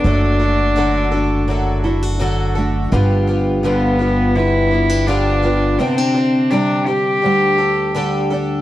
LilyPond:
<<
  \new Staff \with { instrumentName = "Cello" } { \time 4/4 \key g \major \tempo 4 = 84 d'2~ d'8 r4. | r4 b4 e'4 d'4 | c'4 d'8 g'2 r8 | }
  \new Staff \with { instrumentName = "Twelve-string acoustic guitar" } { \time 4/4 \key g \major <fis d' fis' a'>8 <d' fis' a'>8 <fis d' fis' a'>8 <d' fis' a'>8 <fis d' fis' a'>8 <d' fis' a'>8 <fis d' fis' a'>8 <d' fis' a'>8 | <g, d f b f' g'>8 <f b f' g'>8 <g, d f b f' g'>8 <f b f' g'>8 <f b g'>8 <f b g'>8 <g, d f b f' g'>8 <f b f' g'>8 | <c g c' d' g'>8 <c' d' g'>8 <c g c' d' g'>8 <c' d' g'>8 <g d' g' a'>8 <d' g' a'>8 <d g d' g' a'>8 <d' g' a'>8 | }
  \new Staff \with { instrumentName = "Steel-string acoustic guitar" } { \time 4/4 \key g \major << { a4. d'4 e'16 fis'8. a8 | <d b d' g'>4. d'4 b16 d'8. b8 | b16 d'4~ d'16 d'8 g4. d'8 | } \\ { <fis, d>4 d4 fis,4 d4 | g,4 d4 d4 d4 | c4 g4 d,4 d4 | } >> }
  \new Staff \with { instrumentName = "Upright bass" } { \clef bass \time 4/4 \key g \major fis,,1 | g,,1 | r1 | }
>>